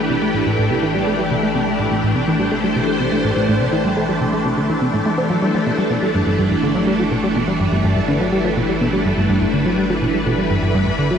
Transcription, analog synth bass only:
0.10 0.17 C3 medium
0.22 0.29 A3 medium
0.34 0.42 A2 medium
0.46 0.58 A2 medium
0.58 0.70 A2 loud
0.71 0.78 C3 medium
0.83 0.94 E3 medium
0.95 1.06 G3 medium
1.07 1.14 A3 loud
1.19 1.23 G3 medium
1.31 1.35 C3 medium
1.43 1.47 A3 medium
1.55 1.62 C3 medium
1.67 1.75 A3 medium
1.79 1.87 A2 medium
1.91 2.03 A2 medium
2.03 2.15 A2 medium
2.15 2.23 C3 medium
2.27 2.39 E3 medium
2.39 2.51 G3 medium
2.52 2.59 A3 medium
2.64 2.68 G3 medium
2.76 2.80 C3 medium
2.88 2.92 A3 medium
3.00 3.08 C3 medium
3.12 3.20 A3 medium
3.24 3.32 A2 medium
3.36 3.48 A2 medium
3.48 3.60 A2 loud
3.61 3.68 C3 medium
3.73 3.84 E3 medium
3.85 3.96 G3 medium
3.97 4.04 A3 medium
4.09 4.13 G3 medium
4.21 4.26 C3 medium
4.33 4.38 A3 medium
4.45 4.53 C3 medium
4.57 4.69 D3 medium
4.69 4.81 E3 medium
4.82 4.89 C3 medium
4.94 5.01 A2 medium
5.06 5.10 A3 loud
5.18 5.25 C4 medium
5.30 5.41 F#3 medium
5.42 5.50 G3 loud
5.54 5.59 F#3 medium
5.66 5.71 B2 medium
5.78 5.83 G3 medium
5.90 5.98 B2 medium
6.03 6.10 G3 medium
6.15 6.22 G2 medium
6.27 6.38 G2 medium
6.39 6.50 G2 loud
6.51 6.55 G2 medium
6.63 6.74 D3 loud
6.75 6.86 F#3 medium
6.87 6.95 G3 loud
6.99 7.04 F#3 medium
7.11 7.16 B2 medium
7.24 7.28 G3 medium
7.36 7.43 B2 medium
7.48 7.55 G3 medium
7.60 7.67 G2 medium
7.72 7.83 G2 medium
7.84 7.95 G2 loud
7.96 8.01 G2 medium
8.08 8.20 D3 medium
8.20 8.32 F#3 medium
8.32 8.40 G3 loud
8.44 8.49 F#3 medium
8.57 8.61 B2 medium
8.69 8.73 G3 medium
8.81 8.88 B2 medium
8.93 9.00 G3 medium
9.05 9.13 G2 medium
9.17 9.28 G2 medium
9.29 9.41 G2 loud
9.41 9.46 G2 medium
9.53 9.65 D3 loud
9.66 9.77 F#3 medium
9.78 9.85 G3 medium
9.90 9.94 F#3 medium
10.02 10.06 B2 medium
10.14 10.18 G3 medium
10.26 10.34 B2 medium
10.38 10.46 G3 medium
10.50 10.58 G2 medium
10.62 10.74 G2 medium
10.74 10.86 G2 loud
10.87 10.91 G2 medium
10.99 11.10 D3 loud
11.11 11.18 F#3 medium

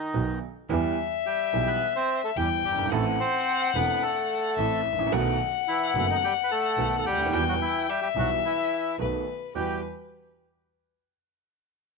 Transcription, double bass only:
0.14 0.38 B1 medium
0.69 0.93 E2 loud
1.53 1.77 B1 medium
2.36 2.60 E2 medium
2.64 2.90 G1 medium
2.91 3.15 A1 medium
3.74 3.98 E1 medium
4.57 4.80 A1 medium
4.85 5.11 A1 medium
5.12 5.35 B1 medium
5.94 6.18 F#1 medium
6.77 7.01 B1 medium
7.05 7.32 D2 medium
7.32 7.56 E2 medium
8.15 8.39 B1 medium
8.99 9.22 B1 medium
9.55 9.78 E2 medium

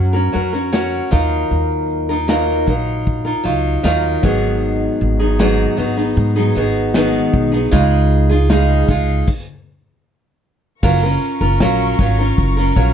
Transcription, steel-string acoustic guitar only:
0.00 0.15 F#3 medium
0.00 0.15 C#4 medium
0.00 0.13 F#4 medium
0.00 0.12 A#4 medium
0.13 0.32 C#4 soft
0.13 0.32 F#4 soft
0.13 0.33 A#4 medium
0.32 0.53 F#3 medium
0.32 0.53 C#4 medium
0.32 0.53 F#4 medium
0.32 0.52 A#4 medium
0.53 0.71 C#4 soft
0.53 0.72 F#4 soft
0.53 0.72 A#4 soft
0.72 1.11 C#4 medium
0.72 1.11 F#4 medium
0.72 1.11 A#4 medium
1.11 2.13 D#3 medium
1.11 2.13 F#3 medium
1.11 2.11 D#4 medium
1.11 2.09 F4 medium
1.11 2.08 A#4 medium
2.09 2.28 D#4 soft
2.09 2.28 F4 soft
2.09 2.28 A#4 medium
2.28 2.67 D#3 medium
2.28 2.66 F#3 medium
2.28 2.67 D#4 medium
2.28 2.67 F4 medium
2.28 2.68 A#4 medium
2.67 3.26 F#3 medium
2.67 3.26 D#4 medium
2.67 3.25 F4 medium
2.67 3.24 A#4 medium
3.25 3.44 D#4 soft
3.25 3.44 F4 soft
3.25 3.45 A#4 medium
3.44 3.83 F#3 medium
3.44 3.83 D#4 medium
3.44 3.83 F4 medium
3.44 3.84 A#4 medium
3.83 4.22 D#3 medium
3.83 4.22 F#3 medium
3.83 4.23 D#4 medium
3.83 4.23 F4 medium
3.83 4.24 A#4 medium
4.23 5.20 G#2 medium
4.23 5.39 D#3 medium
4.23 5.20 F#3 medium
4.23 5.20 B3 medium
4.23 5.20 D#4 medium
4.23 5.19 G#4 medium
5.20 5.38 F#3 soft
5.20 5.39 B3 soft
5.20 5.39 D#4 soft
5.20 5.39 G#4 medium
5.39 5.78 G#2 medium
5.39 5.78 D#3 medium
5.39 5.76 F#3 medium
5.39 5.77 B3 medium
5.39 5.77 D#4 medium
5.39 5.78 G#4 loud
5.77 5.97 F#3 medium
5.77 5.97 B3 medium
5.77 5.96 D#4 medium
5.77 5.95 G#4 medium
5.97 6.37 F#3 soft
5.97 6.36 B3 soft
5.97 6.35 D#4 soft
5.97 6.35 G#4 soft
6.36 6.54 F#3 soft
6.36 6.55 B3 soft
6.36 6.55 D#4 medium
6.36 6.56 G#4 medium
6.55 6.94 F#3 medium
6.55 6.94 B3 medium
6.55 6.95 D#4 medium
6.55 6.95 G#4 medium
6.94 7.53 G#2 medium
6.94 7.53 D#3 loud
6.94 7.53 F#3 medium
6.94 7.52 B3 medium
6.94 7.52 D#4 loud
6.94 7.51 G#4 loud
7.52 7.71 F#3 soft
7.52 7.72 B3 soft
7.52 7.71 D#4 soft
7.52 7.72 G#4 medium
7.71 8.30 C#3 medium
7.71 8.30 G#3 medium
7.71 8.31 D#4 medium
7.71 8.30 F4 medium
7.71 8.28 G#4 medium
8.29 8.49 D#4 soft
8.29 8.49 F4 medium
8.29 8.49 G#4 medium
8.49 8.89 C#3 medium
8.49 8.88 G#3 medium
8.49 8.88 D#4 medium
8.49 8.89 F4 medium
8.49 8.89 G#4 medium
8.89 9.28 G#3 medium
8.89 9.28 D#4 medium
8.89 9.28 F4 medium
8.89 9.29 G#4 medium
10.83 11.02 F#3 medium
10.83 11.02 C#4 medium
10.83 11.03 F4 medium
10.83 11.02 A#4 medium
11.03 11.42 C#4 soft
11.03 11.41 F4 soft
11.03 11.40 A#4 medium
11.41 11.60 C#4 soft
11.41 11.61 F4 soft
11.41 11.60 A#4 medium
11.60 11.98 F#3 medium
11.60 11.99 C#4 medium
11.60 12.00 F4 medium
11.60 12.00 A#4 medium
11.99 12.18 F#3 medium
11.99 12.19 C#4 medium
11.99 12.19 F4 medium
11.99 12.17 A#4 medium
12.18 12.58 C#4 soft
12.18 12.57 F4 soft
12.18 12.56 A#4 medium
12.57 12.75 C#4 soft
12.57 12.76 F4 soft
12.57 12.76 A#4 medium
12.76 12.93 F#3 medium
12.76 12.93 C#4 medium
12.76 12.93 F4 medium
12.76 12.93 A#4 medium

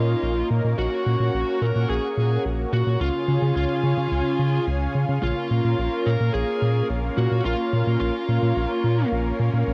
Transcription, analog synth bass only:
0.00 0.15 A#2 medium
0.23 0.43 A#1 medium
0.50 0.61 A#2 loud
0.64 0.75 A#2 medium
0.78 0.88 A#1 loud
1.06 1.16 A#2 medium
1.20 1.30 A#2 medium
1.34 1.44 A#1 medium
1.62 1.72 A#2 medium
1.75 1.86 A#2 medium
1.89 2.00 A#1 medium
2.17 2.38 A#2 medium
2.45 2.65 A#1 medium
2.73 2.83 A#2 loud
2.87 2.97 A#2 medium
3.00 3.11 C#2 medium
3.28 3.38 C#3 medium
3.42 3.52 C#3 medium
3.56 3.66 C#2 medium
3.84 3.94 C#3 medium
3.98 4.08 C#3 medium
4.12 4.22 C#2 medium
4.39 4.60 C#3 medium
4.67 4.88 C#2 loud
4.95 5.05 C#3 medium
5.09 5.19 C#3 medium
5.23 5.33 A#1 loud
5.51 5.61 A#2 medium
5.64 5.75 A#2 medium
5.79 5.89 A#1 medium
6.06 6.16 A#2 medium
6.20 6.30 A#2 medium
6.34 6.44 A#1 loud
6.62 6.82 A#2 medium
6.89 7.10 A#1 medium
7.17 7.27 A#2 loud
7.31 7.41 A#2 medium
7.45 7.55 A#1 medium
7.73 7.83 A#2 medium
7.87 7.97 A#2 medium
8.01 8.11 A#1 medium
8.29 8.39 A#2 medium
8.42 8.52 A#2 medium
8.56 8.66 A#1 loud
8.84 9.04 A#2 medium
9.12 9.32 A#1 medium
9.39 9.50 A#2 loud
9.53 9.64 A#2 medium
9.67 9.73 A#1 medium

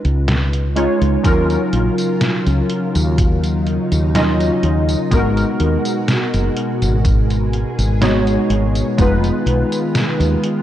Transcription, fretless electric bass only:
0.05 0.86 C#2 medium
1.01 1.16 C#2 medium
1.25 1.56 D#2 medium
1.73 1.89 A#1 medium
2.47 2.61 C#2 medium
2.95 3.77 D#2 medium
3.92 4.49 D#2 medium
4.63 4.94 D#2 medium
5.11 5.43 G#1 loud
5.60 5.76 D#2 medium
6.34 6.48 F#1 medium
6.82 7.63 G#1 medium
7.79 8.36 G#1 medium
8.50 8.81 G#1 medium
8.98 9.30 F1 loud
9.46 9.62 B1 medium
10.20 10.35 D#2 medium

